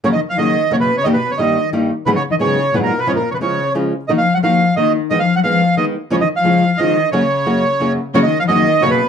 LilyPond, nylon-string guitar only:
\new Staff \with { instrumentName = "Nylon-string guitar" } { \clef bass \time 3/4 \key fis \major \tempo 4 = 178 <fis, cis fis ais cis' fis'>16 r8. <fis, cis fis ais cis' fis'>8 r8 <fis, cis fis ais cis' fis'>8 r8 | <g, dis g ais dis' g'>16 r8. <g, dis g ais dis' g'>8 r8 <g, dis g ais dis' g'>8 r8 | <gis, dis fis b dis' gis'>16 r8. <gis, dis fis b dis' gis'>8 r8 <gis, dis fis b dis' gis'>8 r8 | <cis eis gis cis' eis'>16 r8. <cis eis gis cis' eis'>8 r8 <cis eis gis cis' eis'>8 r8 |
<dis ais dis' fis'>16 r8. <dis ais dis' fis'>8 r8 <dis ais dis' fis'>8 r8 | <dis gis b>16 r8. <dis gis b>8 r8 <dis gis b>8 r8 | <cis eis gis cis' eis'>16 r8. <cis eis gis cis' eis'>8 r8 <cis eis gis cis' eis'>8 r8 | <fis, cis fis ais cis' fis'>16 r8. <fis, cis fis ais cis' fis'>8 r8 <fis, cis fis ais cis' fis'>8 r8 |
<fis, cis fis ais cis' fis'>16 r8. <fis, cis fis ais cis' fis'>8 r8 <fis, cis fis ais cis' fis'>8 r8 | }